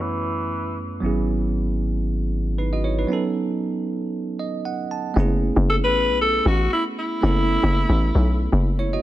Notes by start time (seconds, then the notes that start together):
Already playing: F#2 A3 B3 C#4 E4 B4
0.01 E3
1.00 G#1 F#3 B3 C#4
1.05 E4 G#4
2.58 D#4 B4
2.73 F#4 D#5
2.84 E4 C#5
2.98 D#4 B4
3.07 F#3 B3 C#4
3.12 D#4 A4
4.39 D#5
4.65 F#5
4.91 A5
5.14 F#1 A3 B3 C#4
5.19 E4 G#4
5.56 F#1
5.69 A4
5.82 A1 B4
6.08 B1
6.21 A4
6.46 A1 F#4
6.73 E4
6.99 E4
7.21 F#1 A3 B3 C#4
7.25 E4 A4
7.63 F#1
7.89 A1
8.15 B1
8.52 F#1
8.79 E4 C#5
8.93 F#4 D#5